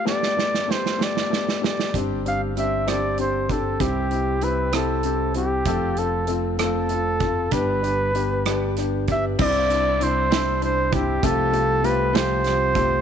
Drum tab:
CC |------------|------------|------------|------------|
HH |------------|x-x-x-x-x-x-|x-x-x-x-x-x-|x-x-x-x-x-x-|
SD |oooooooooooo|------r-----|------r-----|------r-----|
BD |------------|o---------o-|o-----------|o---------o-|

CC |------------|x-----------|------------|
HH |x-x-x-x-x-x-|--x-x-x-x-x-|x-x-x-x-x-x-|
SD |------r-r---|------o-----|------o-o---|
BD |o---------o-|o---------o-|o---------o-|